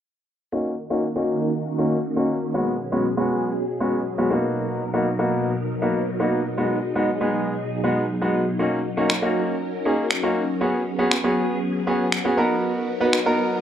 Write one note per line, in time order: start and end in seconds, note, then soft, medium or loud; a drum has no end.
0.52 2.52 D#3 medium
0.52 0.71 A#3 medium
0.52 2.52 A#3 medium
0.52 0.71 C#4 medium
0.52 4.27 C#4 medium
0.52 0.71 D#4 medium
0.52 2.52 F#4 medium
0.52 0.71 F#4 medium
0.90 1.03 A#3 medium
0.90 1.03 C#4 medium
0.90 1.03 D#4 medium
0.90 1.03 F#4 medium
1.16 1.46 A#3 medium
1.16 1.47 C#4 medium
1.16 1.47 D#4 medium
1.16 1.47 F#4 medium
1.78 1.97 A#3 medium
1.78 1.97 C#4 medium
1.78 1.97 D#4 medium
1.78 1.97 F#4 medium
2.16 2.35 A#3 medium
2.16 2.35 C#4 medium
2.16 2.35 D#4 medium
2.16 2.35 F#4 medium
2.54 8.56 B2 medium
2.54 4.29 F#3 medium
2.54 2.73 G#3 medium
2.54 2.73 B3 medium
2.54 2.73 C#4 medium
2.54 2.73 F#4 medium
2.54 4.29 G#4 medium
2.92 3.04 G#3 medium
2.92 3.05 B3 medium
2.92 3.05 C#4 medium
2.92 3.05 F#4 medium
3.17 3.48 G#3 medium
3.17 3.48 B3 medium
3.17 3.48 C#4 medium
3.17 3.48 F#4 medium
3.80 3.99 G#3 medium
3.80 3.99 B3 medium
3.80 3.99 C#4 medium
3.80 3.99 F#4 medium
4.18 4.31 G#3 medium
4.18 4.29 B3 medium
4.18 4.31 C#4 medium
4.18 4.30 F#4 medium
4.31 8.56 F#3 medium
4.31 4.81 A#3 medium
4.31 4.81 B3 medium
4.31 4.81 D#4 medium
4.31 10.57 D#4 medium
4.31 4.81 F#4 medium
4.31 6.56 A#4 medium
4.94 5.06 A#3 medium
4.94 5.06 B3 medium
4.94 5.06 D#4 medium
4.94 5.06 F#4 medium
5.19 5.50 A#3 medium
5.19 5.50 B3 medium
5.19 5.50 D#4 medium
5.19 5.50 F#4 medium
5.82 6.01 A#3 medium
5.82 6.01 B3 medium
5.82 6.01 D#4 medium
5.82 6.01 F#4 medium
6.20 6.38 A#3 medium
6.20 6.38 B3 medium
6.20 6.38 D#4 medium
6.20 6.39 F#4 medium
6.57 6.76 G#3 medium
6.57 6.76 B3 medium
6.57 6.76 D#4 medium
6.57 6.76 F#4 medium
6.57 8.57 G#4 medium
6.95 7.08 G#3 medium
6.95 7.08 B3 medium
6.95 7.08 D#4 medium
6.95 7.08 F#4 medium
7.21 7.51 G#3 medium
7.21 7.52 B3 medium
7.21 7.52 D#4 medium
7.21 7.52 G#4 medium
7.84 8.02 G#3 medium
7.84 8.02 B3 medium
7.84 8.02 D#4 medium
7.84 8.02 F#4 medium
8.21 8.40 G#3 medium
8.21 8.40 B3 medium
8.21 8.40 D#4 medium
8.21 8.40 F#4 medium
8.59 10.59 F#3 medium
8.59 8.78 A#3 medium
8.59 8.78 C#4 medium
8.59 12.34 C#4 medium
8.59 8.78 D#4 medium
8.59 8.78 F#4 medium
8.59 10.59 A#4 medium
8.97 9.10 A#3 medium
8.97 9.10 C#4 medium
8.97 9.10 D#4 medium
8.97 9.10 F#4 medium
9.10 finger snap loud
9.22 9.53 A#3 medium
9.22 9.53 C#4 medium
9.22 9.53 D#4 medium
9.22 9.53 F#4 medium
9.85 10.04 A#3 medium
9.85 10.04 C#4 medium
9.85 10.04 D#4 medium
9.85 10.04 G#4 medium
10.11 finger snap loud
10.23 10.42 A#3 medium
10.23 10.42 C#4 medium
10.23 10.42 D#4 medium
10.23 10.42 F#4 medium
10.61 13.61 F#3 medium
10.61 10.79 B3 medium
10.61 13.61 B3 medium
10.61 10.80 C#4 medium
10.61 10.80 F#4 medium
10.61 12.36 G#4 medium
10.61 10.80 G#4 medium
10.99 11.11 B3 medium
10.99 11.11 C#4 medium
10.99 11.11 F#4 medium
10.99 11.11 G#4 medium
11.11 finger snap loud
11.24 11.55 B3 medium
11.24 11.55 C#4 medium
11.24 11.55 F#4 medium
11.24 11.55 G#4 medium
11.87 12.05 B3 medium
11.87 12.06 C#4 medium
11.87 12.06 F#4 medium
11.87 12.06 G#4 medium
12.12 finger snap loud
12.25 12.36 B3 medium
12.25 12.38 C#4 medium
12.25 12.36 F#4 medium
12.25 12.38 G#4 medium
12.37 12.88 B3 medium
12.37 12.88 D#4 medium
12.37 13.61 D#4 medium
12.37 12.88 F#4 medium
12.37 13.61 A#4 medium
12.37 12.88 A#4 medium
13.00 13.13 B3 medium
13.00 13.13 D#4 medium
13.00 13.13 F#4 medium
13.00 13.13 B4 medium
13.13 finger snap loud
13.26 13.57 B3 medium
13.26 13.57 D#4 medium
13.26 13.57 F#4 medium
13.26 13.57 A#4 medium